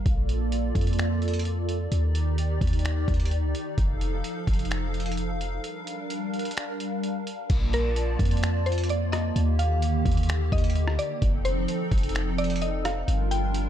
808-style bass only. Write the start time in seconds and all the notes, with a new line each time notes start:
0.06 A#1
0.75 F2
1.92 D#2
2.61 D#2
3.08 D#2
3.43 D2
3.78 F1
4.47 F1
7.50 A#1
8.19 F2
9.36 D#2
10.05 D#2
10.52 D#2
10.87 D2
11.22 F1
11.91 F1
13.08 G1